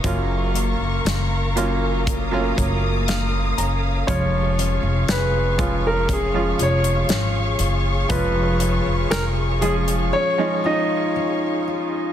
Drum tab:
HH |x-x-x-x-x-x-x-x-|x-x-x-x-x-xxx-x-|x-x-x-xx--------|
SD |----o-------o---|----o-------o---|----o-----------|
BD |o-------o-o-----|o-----o-o-------|o---------------|